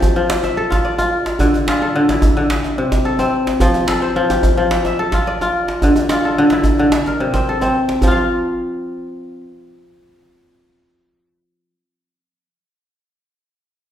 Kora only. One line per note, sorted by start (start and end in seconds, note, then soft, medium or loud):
0.00 0.15 F3 medium
0.00 0.57 C4 medium
0.00 1.30 G4 medium
0.00 0.57 A4 medium
0.00 0.79 C5 medium
0.16 1.45 F3 medium
0.44 1.04 E5 medium
0.57 1.81 A4 medium
0.70 0.98 F4 medium
0.85 1.95 D5 medium
0.98 1.68 F4 medium
1.40 1.94 D3 medium
1.69 2.16 F4 medium
1.82 3.05 A4 medium
1.96 2.36 D3 medium
2.10 3.67 E4 medium
2.37 2.55 D3 medium
2.78 3.66 C3 medium
3.05 3.89 A4 medium
3.19 4.99 C4 medium
3.61 4.15 F3 medium
3.89 4.99 A4 medium
4.02 5.21 C5 medium
4.16 4.56 F3 medium
4.30 5.72 G4 medium
4.57 5.87 F3 medium
4.86 5.48 E5 medium
4.99 6.25 A4 medium
5.14 5.41 F4 medium
5.27 6.38 D5 medium
5.42 6.11 F4 medium
5.83 6.37 D3 medium
6.11 6.58 F4 medium
6.25 7.13 A4 medium
6.38 6.78 D3 medium
6.52 8.09 E4 medium
6.79 6.97 D3 medium
7.07 7.55 A#4 medium
7.20 8.08 C3 medium
7.34 7.62 C4 medium
7.49 8.81 A4 medium
7.62 9.42 C4 medium
8.03 11.69 F3 medium
8.07 11.73 F4 medium
8.07 11.77 F5 medium